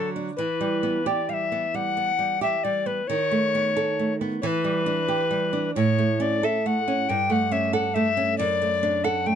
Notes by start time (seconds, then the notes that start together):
Already playing: D3 F#3
0.16 D4
0.37 E3 B4
0.61 G3
0.83 B3
1.06 G4 D5
1.29 G3 F5
1.34 E5
1.52 B3
1.74 G3 F#5
1.97 B3
2.19 G3
2.41 G4 E5
2.64 G3 D5
2.86 B3 B4
3.08 D#3 C#5
3.31 A3
3.55 B3
3.76 A4
3.99 A3
4.21 B3
4.42 E3 C#5
4.47 B4
4.64 G3
4.86 D4
5.08 G4
5.31 G3
5.53 D4
5.76 A2 C#5
5.98 A3
6.20 C#4 D5
6.43 A4 E5
6.66 A3 F#5
6.88 C#4
7.09 G2 G5
7.30 A3 F#5
7.51 C#4 E5
7.73 A4 F#5
7.94 A3 E5
8.17 C#4
8.38 F#2 D5
8.62 A3
8.83 D4
9.04 A4 F#5
9.26 A3 G5